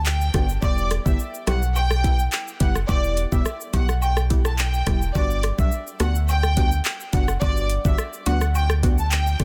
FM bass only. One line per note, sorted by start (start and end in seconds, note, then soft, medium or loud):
0.00 0.30 D2 loud
0.34 0.58 G1 loud
0.62 0.99 E1 loud
1.06 1.17 G1 medium
1.47 2.28 B1 loud
2.61 2.84 F#1 loud
2.89 3.26 E1 loud
3.32 3.43 E1 medium
3.74 4.83 B1 loud
4.87 5.11 E1 loud
5.15 5.52 G1 loud
5.59 5.70 B1 loud
6.00 6.81 D2 loud
7.13 7.37 F#1 loud
7.42 7.78 G1 loud
7.85 7.96 G1 loud
8.26 9.36 D2 medium
9.40 9.44 G1 loud